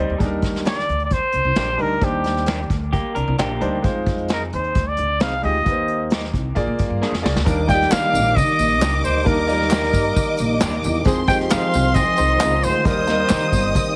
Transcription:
Already playing: grand piano G3 C4 D#4 C5, clean electric guitar G3 D#4
0.10 upright bass D#2
0.18 upright bass D#2, grand piano G3 D4 D#4 G#4, kick, closed hi-hat
0.25 grand piano A#4
0.42 kick, snare, closed hi-hat
0.54 snare, closed hi-hat
0.65 clean electric guitar A#3 D4 G4, trumpet D5, snare, closed hi-hat
0.79 snare
0.89 upright bass D2, closed hi-hat
0.99 closed hi-hat
1.05 trumpet D5
1.10 trumpet C5, kick, closed hi-hat
1.32 upright bass C2, closed hi-hat
1.45 upright bass C2
1.55 upright bass A#1, clean electric guitar A#3 D4 G4, snare, closed hi-hat
1.78 upright bass D2, grand piano G3 D4 D#4 A#4, trumpet A#4, open hi-hat
2.01 upright bass D#2, grand piano G3 D4 D#4 C5, trumpet G4, kick, closed hi-hat
2.24 snare, closed hi-hat
2.37 snare
2.46 clean electric guitar A#3 D4 G4, snare, closed hi-hat
2.70 upright bass D2, kick, closed hi-hat
2.81 closed hi-hat
2.93 clean electric guitar A#3 G4, kick, closed hi-hat
3.15 upright bass C2, clean electric guitar D4 A#4, closed hi-hat
3.28 upright bass C2
3.38 upright bass A#1, clean electric guitar A#3 D4 G4, snare, closed hi-hat
3.60 upright bass D2, grand piano G3 D4 D#4 C5, closed hi-hat
3.82 upright bass F2, grand piano G#3 D#4 F4 C5, kick, closed hi-hat
4.06 kick, closed hi-hat
4.18 closed hi-hat
4.28 clean electric guitar C4 D#4 G#4, snare, closed hi-hat
4.32 trumpet A#4
4.52 upright bass D#2, trumpet C5, closed hi-hat
4.64 closed hi-hat
4.75 upright bass D2, kick, closed hi-hat
4.88 trumpet D5
4.97 upright bass D2, closed hi-hat
5.20 upright bass C2, clean electric guitar C4 D#4 G#4, trumpet F5, snare, closed hi-hat
5.42 upright bass D2, grand piano G#3 D#4 F4 G4, trumpet D#5, open hi-hat
5.64 upright bass D#2, grand piano A#3 D#4 G4 B4, kick, closed hi-hat
5.72 grand piano C5
5.88 closed hi-hat
6.10 clean electric guitar A#3 D#4 G4, snare, closed hi-hat
6.24 snare
6.34 upright bass C2, kick, closed hi-hat
6.55 upright bass A#1, grand piano A#3 F4 G#4 D5, kick, closed hi-hat
6.67 upright bass A#2
6.79 upright bass G#2, kick, closed hi-hat
6.90 upright bass G2
7.02 clean electric guitar A#3 D4 G#4, snare
7.12 upright bass F2, snare
7.22 upright bass C#2, grand piano A#3 F4 G#4 D5, snare
7.35 upright bass D2, snare
7.44 upright bass D#2, tonewheel organ D#3 G3 A#3 D#4, grand piano G3 A#3 D4 D#4 A#4, string section D#5 D6, kick, closed hi-hat, tambourine
7.67 grand piano G3 A#3 D#4 F4 D5, trumpet G5, kick, snare, closed hi-hat, tambourine
7.74 grand piano G4
7.80 snare, closed hi-hat
7.91 upright bass D#3, clean electric guitar A#3 D4 G4, trumpet F5, snare, clap, closed hi-hat, tambourine
8.13 upright bass A#1, closed hi-hat, tambourine
8.25 closed hi-hat
8.36 upright bass D#3, trumpet D#5, kick, closed hi-hat, tambourine
8.58 upright bass A#1, closed hi-hat, tambourine
8.81 upright bass C#2, clean electric guitar A#3 D4 G4, snare, clap, closed hi-hat, tambourine
9.04 upright bass D2, trumpet C5, closed hi-hat, tambourine
9.24 upright bass D#2, grand piano G3 A#3 D4 D#4 A#4, trumpet A#4, kick, closed hi-hat
9.47 grand piano F3 A#3 D#4 A#4 D5, closed hi-hat, tambourine
9.52 grand piano G3
9.60 snare, closed hi-hat
9.70 clean electric guitar A#3 D4 G4, snare, clap, closed hi-hat, tambourine
9.84 snare
9.93 upright bass G2, kick, closed hi-hat, tambourine
10.04 closed hi-hat
10.16 upright bass D#3, kick, closed hi-hat, tambourine
10.37 upright bass A#1, closed hi-hat, tambourine
10.60 upright bass D#2, clean electric guitar A#3 D4 G4, snare, clap, closed hi-hat, tambourine
10.83 upright bass E2, closed hi-hat, tambourine
11.04 upright bass F2, grand piano F3 G#3 C4 D#4 G#4, tonewheel organ F3 G#3 C4, string section C5 C6, kick, closed hi-hat, tambourine
11.27 grand piano F3 G#3 C4 D#4 G4, trumpet G5, kick, snare, closed hi-hat, tambourine
11.39 snare, closed hi-hat
11.49 upright bass F3, clean electric guitar C4 D#4 G#4, trumpet F5, snare, clap, closed hi-hat, tambourine
11.73 upright bass C2, closed hi-hat, tambourine
11.83 closed hi-hat
11.94 upright bass F3, clean electric guitar C4 G#4, trumpet D#5, kick, closed hi-hat, tambourine
12.16 upright bass C2, clean electric guitar D#4 C5, closed hi-hat, tambourine
12.39 upright bass C#2, clean electric guitar G#3 C4 D#4 F4 G#4, snare, clap, closed hi-hat, tambourine
12.62 upright bass D2, trumpet C5, open hi-hat, tambourine
12.85 upright bass D#2, grand piano G3 A#3 C4 D#4 A#4, tonewheel organ G3 A#3, trumpet C5, string section D#5 D#6, kick, closed hi-hat, tambourine
13.06 grand piano G3 A#3 C4 D#4 A#4, snare, closed hi-hat, tambourine
13.18 closed hi-hat
13.28 upright bass D#3, clean electric guitar A#3 D#4 G4, snare, clap, closed hi-hat, tambourine
13.52 upright bass G1, kick, closed hi-hat, tambourine
13.74 upright bass D#3, kick, closed hi-hat, tambourine

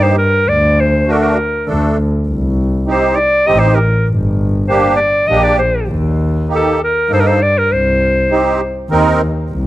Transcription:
Already playing: double bass G2, accordion A#3 D#4 G4
0.03 clarinet C5
0.18 clarinet A#4
0.48 double bass D2, clarinet D5
0.80 clarinet C5
1.06 accordion A3 D4 F#4
1.11 clarinet A4 A#4
1.22 clarinet A#4
1.67 double bass D2, accordion A3 D4 A4
2.28 double bass C2
2.87 accordion C4 D#4 G4
2.91 clarinet C5
3.16 clarinet D5
3.47 double bass A1, accordion C4 D#4 G4, clarinet D#5
3.59 clarinet C5
3.75 clarinet A#4
4.10 double bass G1
4.68 accordion A#3 D4 G4, clarinet C5
4.96 clarinet D5
5.27 double bass A#1, accordion A#3 D4 G4, clarinet D#5
5.43 clarinet D5
5.59 clarinet C5
5.89 double bass D#2
6.48 accordion A#3 D#4 G4
6.56 clarinet A4
6.84 clarinet A#4
7.09 double bass G2, accordion A#3 D#4 A4
7.13 clarinet C5
7.20 clarinet A#4
7.27 clarinet C5
7.43 clarinet D5
7.58 clarinet A#4
7.71 double bass C2, clarinet C5
8.30 accordion C4 D#4 G4
8.90 double bass D#2, accordion C4 D#4 A#4
9.52 double bass C2

